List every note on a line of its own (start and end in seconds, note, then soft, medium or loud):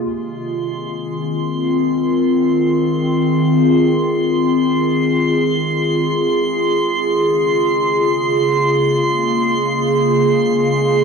0.00 7.20 D#3 medium
0.00 1.75 A#3 medium
0.00 11.04 F4 medium
0.00 11.04 C6 medium
0.04 11.04 G#3 medium
0.48 8.31 C4 medium
2.21 11.04 G#4 medium
7.21 11.04 C#3 medium
7.86 11.04 A#3 medium